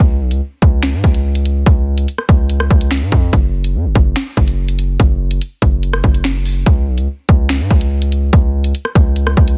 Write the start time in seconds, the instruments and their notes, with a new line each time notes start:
0.00 808-style bass C#2
0.21 808-style bass B1
0.31 808-style bass C#2, closed hi-hat
0.62 808-style bass C#2, kick
0.83 finger snap, snare, closed hi-hat
0.93 808-style bass G#2
1.04 808-style bass C#2, kick, closed hi-hat
1.14 closed hi-hat
1.35 closed hi-hat
1.45 closed hi-hat
1.66 808-style bass C#2, kick, closed hi-hat
1.98 closed hi-hat
2.08 closed hi-hat
2.18 cross-stick
2.29 808-style bass C#2, kick, closed hi-hat
2.50 closed hi-hat
2.60 cross-stick
2.71 808-style bass C#2, kick
2.81 closed hi-hat
2.91 finger snap, snare
3.02 808-style bass G#2
3.12 808-style bass F2, kick, closed hi-hat
3.33 808-style bass F#1, kick, closed hi-hat
3.64 closed hi-hat
3.75 808-style bass F#2
3.85 808-style bass F#1
3.95 808-style bass F#1, kick
4.16 finger snap, snare, closed hi-hat
4.37 808-style bass F#1, kick, closed hi-hat
4.48 closed hi-hat
4.68 closed hi-hat
4.79 closed hi-hat
5.00 808-style bass F#1, kick, closed hi-hat
5.31 closed hi-hat
5.41 closed hi-hat
5.62 808-style bass F#1, kick, closed hi-hat
5.83 closed hi-hat
5.93 cross-stick, closed hi-hat
6.04 808-style bass F#1, kick
6.14 closed hi-hat
6.24 finger snap, snare
6.45 open hi-hat
6.66 808-style bass C#2, kick, closed hi-hat
6.87 808-style bass B1
6.98 808-style bass C#2, closed hi-hat
7.29 808-style bass C#2, kick
7.49 finger snap, snare, closed hi-hat
7.60 808-style bass G#2
7.71 808-style bass C#2, kick, closed hi-hat
7.81 closed hi-hat
8.02 closed hi-hat
8.12 closed hi-hat
8.33 808-style bass C#2, kick, closed hi-hat
8.64 closed hi-hat
8.75 closed hi-hat
8.85 cross-stick
8.95 808-style bass C#2, kick, closed hi-hat
9.16 closed hi-hat
9.27 cross-stick
9.37 808-style bass C#2, kick
9.48 closed hi-hat